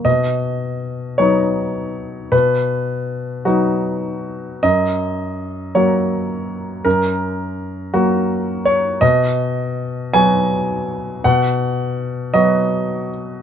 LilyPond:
<<
  \new Staff \with { instrumentName = "Grand piano" } { \time 6/8 \key b \lydian \tempo 4. = 54 dis''4. cis''4. | b'4. fis'4. | dis''4. cis''4. | ais'4. fis'4 cis''8 |
dis''4. gis''4. | fis''4. dis''4 r8 | }
  \new Staff \with { instrumentName = "Grand piano" } { \clef bass \time 6/8 \key b \lydian b,4. <fis b dis'>4. | b,4. <fis b dis'>4. | fis,4. <fis ais fis'>4. | fis,4. <fis ais>4. |
b,4. <fis b fis'>4. | b,4. <fis b fis'>4. | }
>>